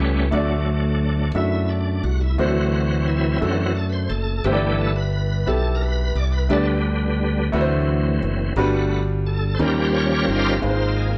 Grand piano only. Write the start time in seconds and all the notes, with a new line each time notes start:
Already playing: A2 A3 E4 G4 C#5
0.31 D3 A3 D4 F#4 D5
1.35 A3 D4 F#4 E5
2.38 D3 A3 D4 F#4 C5
3.41 A3 D4 F#4 A4
4.44 G2 B3 E4 G4 C5
4.53 D5
5.46 B3 E4 G4 A4
6.49 D3 A3 D4 G4 D5
6.56 B3
7.52 D3 A3 D4 F#4 B4
7.61 C5
8.57 G2 G3 D4 F#4 B4
9.59 D#3 G3 C#4 D#4 A#4
10.61 G#2 G#3 D#4 F4 B4
10.69 C5